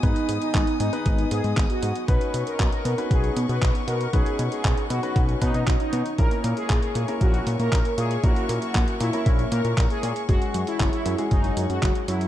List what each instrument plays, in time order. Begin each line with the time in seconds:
Already playing: string section B3 D#5 G#5 D#6
0.03 analog synth bass G#1, grand piano B3 D#4 G#4 B4, analog polysynth D#4, kick, closed hi-hat
0.16 closed hi-hat
0.29 analog synth bass G#2, closed hi-hat
0.42 analog polysynth D#4, closed hi-hat
0.54 analog synth bass G#1, kick, clap, closed hi-hat
0.67 closed hi-hat
0.80 analog synth bass G#2, analog polysynth D#4, closed hi-hat
0.93 grand piano B3 D#4 G#4 B4, closed hi-hat
1.06 analog synth bass G#1, kick, closed hi-hat
1.19 closed hi-hat
1.31 analog synth bass G#2, analog polysynth G#4, closed hi-hat
1.44 analog synth bass G#2, closed hi-hat
1.57 analog synth bass G#1, kick, clap, closed hi-hat
1.70 analog polysynth F#4, closed hi-hat
1.83 analog synth bass G#2, closed hi-hat
1.96 closed hi-hat
2.08 analog synth bass B1, grand piano C#4 D#4 F#4 B4, analog polysynth B4, string section F#5 C#6, kick, closed hi-hat
2.21 closed hi-hat
2.34 analog synth bass B2, closed hi-hat
2.47 analog polysynth A#4, closed hi-hat
2.60 analog synth bass B1, kick, clap, closed hi-hat
2.72 analog polysynth A#4, closed hi-hat
2.85 analog synth bass B2, closed hi-hat
2.98 grand piano C#4 D#4 F#4 B4, closed hi-hat
3.11 analog synth bass B1, analog polysynth G#4, kick, closed hi-hat
3.24 closed hi-hat
3.36 analog synth bass B2, closed hi-hat
3.49 analog synth bass B2, analog polysynth B4, closed hi-hat
3.62 analog synth bass B1, kick, clap, closed hi-hat
3.75 closed hi-hat
3.88 analog synth bass B2, analog polysynth A#4, closed hi-hat
4.01 closed hi-hat
4.13 analog synth bass B1, grand piano C#4 D#4 F#4 B4, analog polysynth G#4, kick, closed hi-hat
4.26 closed hi-hat
4.39 analog synth bass B2, closed hi-hat
4.52 analog polysynth G#4, closed hi-hat
4.65 analog synth bass B1, kick, clap, closed hi-hat
4.78 closed hi-hat
4.90 analog synth bass B2, analog polysynth F#4, closed hi-hat
5.03 grand piano C#4 D#4 F#4 B4, closed hi-hat
5.16 analog synth bass B1, kick, closed hi-hat
5.29 closed hi-hat
5.41 analog synth bass B2, grand piano C#4 D#4 F#4 B4, analog polysynth D#4, kick, closed hi-hat
5.54 analog synth bass B2, grand piano C#4 D#4 F#4 D#5, closed hi-hat
5.67 analog synth bass B1, kick, clap, closed hi-hat
5.80 analog polysynth D#4, closed hi-hat
5.93 analog synth bass B2, closed hi-hat
6.06 closed hi-hat
6.18 analog synth bass A#1, grand piano A#3 C#4 E4 A#4, analog polysynth A#4, string section A#4 C#5 E5 C#6, kick, closed hi-hat
6.31 closed hi-hat
6.44 analog synth bass A#2, closed hi-hat
6.57 analog polysynth G#4, closed hi-hat
6.70 analog synth bass A#1, kick, clap, closed hi-hat
6.82 analog polysynth G#4, closed hi-hat
6.95 analog synth bass A#2, closed hi-hat
7.08 grand piano A#3 C#4 E4 A#4, closed hi-hat
7.21 analog synth bass A#1, analog polysynth F#4, kick, closed hi-hat
7.34 closed hi-hat
7.47 analog synth bass A#2, closed hi-hat
7.59 analog synth bass A#2, analog polysynth A#4, closed hi-hat
7.72 analog synth bass A#1, kick, clap, closed hi-hat
7.85 closed hi-hat
7.98 analog synth bass A#2, analog polysynth G#4, closed hi-hat
8.11 closed hi-hat
8.24 analog synth bass A#1, grand piano A#3 C#4 E4 A#4, analog polysynth F#4, kick, closed hi-hat
8.36 closed hi-hat
8.49 analog synth bass A#2, closed hi-hat
8.62 analog polysynth F#4, closed hi-hat
8.75 analog synth bass A#1, kick, clap, closed hi-hat
8.88 closed hi-hat
9.00 analog synth bass A#2, analog polysynth E4, closed hi-hat
9.13 grand piano A#3 C#4 E4 A#4, closed hi-hat
9.26 analog synth bass A#1, kick, closed hi-hat
9.39 closed hi-hat
9.52 analog synth bass A#2, analog polysynth A#4, closed hi-hat
9.65 analog synth bass A#2, closed hi-hat
9.78 analog synth bass A#1, kick, clap, closed hi-hat
9.90 analog polysynth G#4, closed hi-hat
10.03 analog synth bass A#2, closed hi-hat
10.16 closed hi-hat
10.29 analog synth bass F#1, grand piano G#3 C#4 F#4 G#4, analog polysynth F#4, string section G#4 C#5 F#5, kick, closed hi-hat
10.42 closed hi-hat
10.54 analog synth bass F#2, closed hi-hat
10.67 analog polysynth E4, closed hi-hat
10.80 analog synth bass F#1, kick, clap, closed hi-hat
10.93 analog polysynth E4, closed hi-hat
11.06 analog synth bass F#2, closed hi-hat
11.18 grand piano G#3 C#4 F#4 G#4, closed hi-hat
11.31 analog synth bass F#1, analog polysynth D#4, kick, closed hi-hat
11.44 closed hi-hat
11.57 analog synth bass F#2, closed hi-hat
11.70 analog synth bass F#2, analog polysynth F#4, closed hi-hat
11.83 analog synth bass F#1, kick, clap, closed hi-hat
11.95 closed hi-hat
12.08 analog synth bass F#2, analog polysynth E4, closed hi-hat
12.21 closed hi-hat